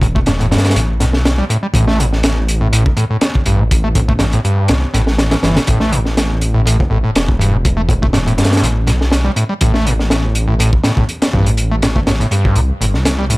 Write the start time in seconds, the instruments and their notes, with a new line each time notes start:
Already playing: detuned saw bass E1
0.02 acid bass A2, kick, closed hi-hat
0.15 acid bass A3, kick
0.26 acid bass G2, snare, closed hi-hat
0.40 acid bass A2, closed hi-hat
0.51 acid bass G2, snare, closed hi-hat
0.58 snare, closed hi-hat
0.64 snare, closed hi-hat
0.70 snare, closed hi-hat
0.76 detuned saw bass A1, acid bass B2, closed hi-hat
1.00 detuned saw bass B1, acid bass A2, snare, closed hi-hat
1.13 snare
1.25 snare, closed hi-hat
1.38 acid bass G3
1.50 acid bass A2, closed hi-hat
1.63 acid bass G3
1.74 detuned saw bass A1, acid bass A2, kick, closed hi-hat
1.87 acid bass A3, snare
1.99 acid bass A2, closed hi-hat
2.13 snare
2.23 snare, closed hi-hat
2.48 closed hi-hat
2.61 acid bass A2
2.73 acid bass A2, closed hi-hat
2.86 kick
2.97 acid bass A2, closed hi-hat
3.10 acid bass A2
3.21 snare, closed hi-hat
3.35 kick
3.46 detuned saw bass A1, acid bass G2, closed hi-hat
3.59 acid bass A2
3.71 kick, closed hi-hat
3.84 acid bass A3
3.95 acid bass A2, kick, closed hi-hat
4.08 acid bass A3, kick
4.19 acid bass G2, snare, closed hi-hat
4.33 acid bass A2, closed hi-hat
4.44 acid bass G2, closed hi-hat
4.68 detuned saw bass C2, acid bass B2, snare, closed hi-hat
4.94 detuned saw bass A1, acid bass A2, snare, closed hi-hat
5.07 snare
5.18 snare, closed hi-hat
5.31 acid bass E3, snare, closed hi-hat
5.43 detuned saw bass G1, acid bass E3, snare, closed hi-hat
5.56 acid bass G2, snare, closed hi-hat
5.67 detuned saw bass A1, acid bass A2, kick, closed hi-hat
5.80 acid bass A3, snare
5.92 acid bass A2, closed hi-hat
6.05 snare
6.17 snare, closed hi-hat
6.41 closed hi-hat
6.54 acid bass A2
6.66 acid bass A2, closed hi-hat
6.80 kick
6.90 detuned saw bass A1, acid bass A2
7.04 detuned saw bass E1, acid bass A2
7.15 detuned saw bass E1, snare, closed hi-hat
7.28 kick
7.39 acid bass G2, closed hi-hat
7.53 acid bass A2
7.65 kick, closed hi-hat
7.77 acid bass A3
7.89 acid bass A2, kick, closed hi-hat
8.02 acid bass A3, kick
8.13 acid bass G2, snare, closed hi-hat
8.26 acid bass A2, closed hi-hat
8.38 acid bass G2, snare, closed hi-hat
8.44 snare, closed hi-hat
8.53 snare, closed hi-hat
8.57 snare, closed hi-hat
8.62 detuned saw bass A1, acid bass B2, closed hi-hat
8.87 detuned saw bass B1, acid bass A2, snare, closed hi-hat
9.01 snare
9.12 snare, closed hi-hat
9.25 acid bass G3
9.36 acid bass A2, closed hi-hat
9.49 acid bass G3
9.61 detuned saw bass A1, acid bass A2, kick, closed hi-hat
9.74 acid bass A3, snare
9.85 acid bass A2, closed hi-hat
9.99 snare
10.10 snare, closed hi-hat
10.35 closed hi-hat
10.48 acid bass A2
10.59 acid bass A2, closed hi-hat
10.73 kick
10.84 acid bass A2, snare, closed hi-hat
10.97 acid bass A2, kick
11.09 closed hi-hat
11.22 snare, closed hi-hat
11.33 detuned saw bass A1, acid bass G2, kick
11.46 acid bass A2, closed hi-hat
11.57 closed hi-hat
11.71 acid bass A3
11.82 acid bass A2, snare, closed hi-hat
11.96 acid bass A3, kick
12.07 acid bass G2, snare, closed hi-hat
12.20 acid bass A2, closed hi-hat
12.31 acid bass G2, closed hi-hat
12.45 kick
12.55 detuned saw bass C2, acid bass B2, closed hi-hat
12.81 detuned saw bass G1, acid bass A2, closed hi-hat
12.94 detuned saw bass C2, snare
13.05 snare, closed hi-hat
13.18 acid bass G3
13.30 acid bass A2, closed hi-hat